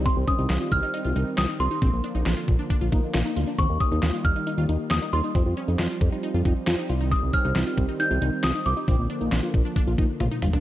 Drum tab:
HH |x-x-x-x-x-x-x-x-|x-x-x-x-x-x-x-o-|x-x-x-x-x-x-x-x-|x-x-x-x-x-x-x-x-|
CP |----x-------x---|----x-------x---|----x-------x---|----x-------x---|
SD |----o-------o---|----o-------o---|----o-------o---|----o-------o---|
T1 |----------------|----------------|----------------|----------------|
T2 |----------------|----------------|----------------|----------------|
FT |----------------|----------------|----------------|----------------|
BD |o-o---o---------|o-----o-o-o-----|o-o---o---------|o-----o---o-----|

HH |x-x-x-x-x-x-x-x-|x-x-x-x-x-x-x-o-|
CP |----x-------x---|----x-----------|
SD |----o-------o---|----o-----------|
T1 |----------------|------------o---|
T2 |----------------|--------------o-|
FT |----------------|---------------o|
BD |o-o---o---------|o-----o-o-o-----|